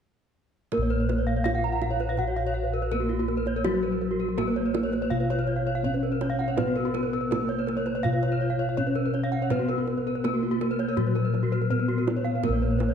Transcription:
0.72 A#3 A#4, kendang high, kendang low
0.78 A#1
0.82 C#5
0.90 B4
1.00 C#5
1.09 B4, kendang high
1.18 C#5
1.27 F5
1.36 C#5
1.44 B3 F4 F5, kendang high, kendang low
1.55 F#5
1.64 A#5
1.72 F#5
1.82 F5, kendang high
1.91 C#5
2.00 B4, kendang slap
2.09 F5
2.17 F#4 F#5, kendang slap, kendang low
2.28 C#5
2.36 F5, kendang slap
2.47 C#5
2.54 F5
2.63 B4
2.73 A#4
2.82 B4
2.91 A#3 B3 A#4, kendang low
3.00 F#4
3.09 F4
3.19 F#4
3.28 A#4, kendang slap
3.37 B4
3.46 C#5, kendang slap
3.56 A#4
3.64 F#3 F#4, kendang high, kendang low
3.74 B4
3.83 A#4
3.92 B4
4.01 A#4
4.11 F#4
4.20 A#4
4.29 F#4
4.38 A#3 B3 A#4, kendang high, kendang low
4.47 B4
4.56 C#5
4.66 B4
4.74 A#4, kendang high
4.83 C#5
4.92 B4, kendang slap
5.02 C#5
5.10 B2 F4 F5, kendang slap, kendang low
5.20 B4
5.30 C#5, kendang slap
5.39 B4
5.47 C#5
5.56 F5
5.67 C#5
5.75 F5
5.83 B3 C#4 C#5, kendang low
5.94 B4
6.03 A#4
6.12 B4
6.21 C#5, kendang slap, kendang high
6.30 F5
6.39 F#5, kendang slap
6.48 C#5
6.57 B3 B4, kendang high, kendang low
6.67 F#4
6.76 A#4
6.85 F#4
6.94 A#4, kendang high
7.03 B4
7.13 A#4
7.21 B4
7.31 A#3 B3 A#4, kendang high, kendang low
7.39 B4
7.49 C#5
7.59 B4
7.67 A#4, kendang high
7.77 C#5
7.86 B4, kendang slap
7.95 C#5
8.03 B2 F4 F5, kendang slap, kendang low
8.13 B4
8.23 C#5, kendang slap
8.32 B4
8.41 C#5
8.50 F5
8.59 C#5
8.69 F5
8.77 B3 C#4 C#5, kendang low
8.87 B4
8.95 A#4
9.05 B4
9.14 C#5, kendang slap
9.24 F5
9.32 F#5, kendang slap
9.42 C#5
9.50 B3 B4, kendang high, kendang low
9.59 F#4
9.69 A#4, kendang slap
9.78 F#4
9.87 A#4, kendang slap
9.97 B4
10.07 A#4
10.15 B4
10.24 A#3 B3 A#4, kendang slap, kendang high, kendang low
10.34 F#4
10.43 F4
10.51 F#4
10.61 A#4, kendang slap, kendang high
10.71 B4
10.79 C#5, kendang slap
10.89 A#4
10.97 A#2 F#3 F#4, kendang slap, kendang low
11.07 B4
11.15 A#4, kendang slap
11.25 B4
11.34 A#4, kendang slap
11.43 F#4
11.52 B4
11.62 A#4
11.70 B3 B4, kendang low
11.80 A#4
11.88 F#4
11.98 A#4
12.07 B4, kendang slap, kendang high
12.17 C#5
12.25 F5, kendang slap
12.35 B4
12.43 A#3 A#4, kendang high, kendang low
12.49 A#1 C#5
12.62 B4
12.71 C#5
12.79 B4, kendang high
12.89 C#5

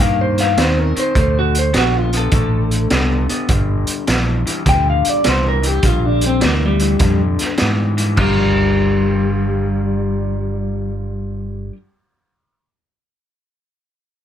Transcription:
0.00 G2 D#3 A#3 F5
0.21 C5
0.38 F5, snare, closed hi-hat
0.57 D#2 D#3 C4 C5, snare, closed hi-hat
0.79 A#4
0.96 D#3 C4 C5, closed hi-hat
1.15 D2 D3 A3, kick, closed hi-hat
1.19 C5
1.39 F#4
1.55 closed hi-hat
1.59 C5
1.73 A#1 D3 B3, snare, closed hi-hat
1.77 F#4
1.97 F4
2.12 D3 B3, closed hi-hat
2.17 A4
2.31 A1 D3 A3, kick, closed hi-hat
2.71 closed hi-hat
2.90 C2 D3 B3, snare, closed hi-hat
3.29 D3 B3, closed hi-hat
3.48 G1 G2 D3, kick, closed hi-hat
3.87 muted fingered electric bass stroke, closed hi-hat
4.07 A#1 G2 E3, snare, closed hi-hat
4.46 G2 E3, closed hi-hat
4.66 D2 G2 D3 G5, kick, snare, closed hi-hat
4.90 F5
5.05 muted fingered electric bass stroke, closed hi-hat
5.09 D5
5.24 C2 G2 E3, snare, closed hi-hat
5.29 C5
5.48 A#4
5.62 G2 E3, closed hi-hat
5.67 G4
5.82 A#1 G2 D3 F4, kick, closed hi-hat
6.06 D4
6.21 closed hi-hat
6.26 C4
6.41 D2 G2 E3, snare, closed hi-hat
6.46 A#3
6.66 G3
6.79 G2 E3, closed hi-hat
6.99 F2 G2 D3, kick, snare, closed hi-hat
7.39 muted fingered electric bass stroke, snare, closed hi-hat
7.57 G2 E3, snare, closed hi-hat
7.62 G#2
7.97 G2 E3, closed hi-hat
8.16 G1 G3 D4 F4, kick, floor tom, crash
8.21 G3 A#4

